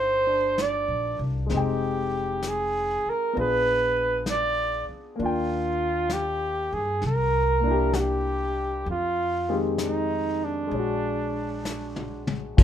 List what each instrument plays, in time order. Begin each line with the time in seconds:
Already playing: upright bass G1, grand piano A#3 D4 D#4 F4, flugelhorn C5
0.27 grand piano D4
0.58 brush sweep, snare, hi-hat pedal
0.62 flugelhorn D5
0.88 upright bass A#1
1.19 upright bass C2
1.46 grand piano G#3 C4, brush sweep, snare
1.51 upright bass F1, grand piano D#4, flugelhorn G4
1.57 grand piano G5
2.42 brush sweep, snare, hi-hat pedal
2.48 flugelhorn G#4
3.06 flugelhorn A#4, muted upright bass stroke
3.33 upright bass A#1, grand piano B3 D4 F4, brush sweep
3.38 grand piano G#4, flugelhorn B4
4.26 brush sweep, snare, hi-hat pedal
4.31 flugelhorn D5
4.89 muted upright bass stroke
5.16 upright bass D#2, grand piano A#3 D4, brush sweep
5.23 flugelhorn F4, grand piano F4 G5
6.10 flugelhorn G4, brush sweep, snare, hi-hat pedal
6.72 upright bass G2, flugelhorn G#4
7.02 upright bass C2, brush sweep, snare
7.06 flugelhorn A#4
7.60 grand piano A#3 D4
7.67 grand piano E4
7.71 grand piano G4
7.93 flugelhorn F#4, brush sweep, snare, hi-hat pedal
8.00 flugelhorn G4
8.85 upright bass F2, brush sweep
8.90 flugelhorn F4
9.49 grand piano D#3 G#3 C4 G4
9.78 brush sweep, snare, hi-hat pedal
9.83 flugelhorn D#4
10.44 flugelhorn D4
10.67 grand piano G#3, brush sweep
10.71 upright bass A#1, grand piano D4 C#5
10.79 grand piano F#4
11.65 snare, hi-hat pedal
11.96 mid tom
12.27 mid tom
12.57 upright bass D#2, grand piano A#2 F3, brush sweep, kick, crash